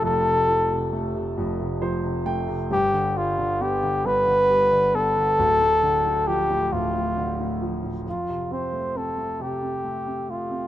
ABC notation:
X:1
M:6/8
L:1/16
Q:3/8=45
K:Flyd
V:1 name="Flugelhorn"
A4 z8 | G2 F2 G2 B4 A2- | A4 G2 F4 z2 | F2 c2 A2 G4 F2 |]
V:2 name="Grand piano"
z8 c2 g2 | z12 | z12 | z12 |]
V:3 name="Grand piano" clef=bass
[F,,,F,,C,F,A,] C, F, C, A, C, [F,,,F,,] C, F, C, A, C, | [G,,,G,,] D, G, D, B, D, [G,,,G,,] D, G, D, B, D, | [D,,,D,,] A,, D, A,, F, A,, [D,,,D,,] A,, D, A,, F, A,, | F,, C, C A, C A, C, C A, C A, C |]